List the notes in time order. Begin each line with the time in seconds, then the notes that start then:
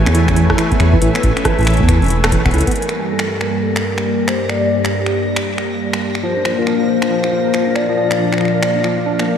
Already playing: A3 A4 B4 C#5 E5 G#5
0.06 E2 B3, finger snap, closed hi-hat
0.15 E3, closed hi-hat
0.28 C#4, finger snap, kick, closed hi-hat
0.36 E3, closed hi-hat
0.50 E4, kick, cross-stick
0.58 E3, finger snap, closed hi-hat
0.72 B3, kick, closed hi-hat
0.80 E2 E3, finger snap, closed hi-hat
0.93 E3, kick
1.02 A1 E3, closed hi-hat
1.15 B3, finger snap, closed hi-hat
1.23 A1 E3, kick, closed hi-hat
1.37 C#4, finger snap, closed hi-hat
1.45 E3, kick, cross-stick, closed hi-hat
1.59 A1 E4, closed hi-hat
1.61 closed hi-hat
1.63 closed hi-hat
1.65 finger snap, closed hi-hat
1.67 E3, closed hi-hat
1.70 closed hi-hat
1.74 closed hi-hat
1.77 E2 B3, kick, closed hi-hat
1.89 E3, finger snap, kick, closed hi-hat
2.02 E1 C#4, closed hi-hat
2.04 closed hi-hat
2.06 closed hi-hat
2.08 E3, closed hi-hat
2.10 closed hi-hat
2.24 B3, finger snap, cross-stick, closed hi-hat
2.32 E3, kick, closed hi-hat
2.46 E1 B3, finger snap, kick, closed hi-hat
2.51 E4, closed hi-hat
2.54 C#2, closed hi-hat
2.58 closed hi-hat
2.61 closed hi-hat
2.67 B3, kick, closed hi-hat
2.71 closed hi-hat
2.76 G2 G3 A#3 G4 A#4 D5 A#6, closed hi-hat
2.82 closed hi-hat
2.89 finger snap, closed hi-hat
3.11 A4
3.19 finger snap
3.41 A#4, finger snap
3.62 A4
3.76 finger snap
3.84 A#4
3.98 finger snap
4.28 C5, finger snap
4.49 D5, finger snap
4.85 finger snap
5.06 finger snap
5.36 finger snap
5.58 finger snap
5.93 finger snap
6.15 finger snap
6.23 A#2 F3 D4 C5 F5
6.37 D4
6.45 F3, finger snap
6.59 F4 A#4
6.67 F3, finger snap
6.80 A#4
6.89 F3 C5
7.02 D4, finger snap
7.10 F3
7.24 F4, finger snap
7.32 F3
7.46 A#4
7.54 F3, finger snap
7.67 D4
7.75 F3 D5, finger snap
7.89 F3
7.97 F3
8.11 D4, finger snap
8.19 F3
8.32 F4, finger snap
8.38 F3, finger snap
8.41 finger snap
8.45 finger snap
8.48 finger snap
8.54 A#4
8.62 F3, finger snap
8.76 D4
8.84 F3, finger snap
8.98 F4
9.06 D4
9.19 A#3, finger snap
9.28 A#3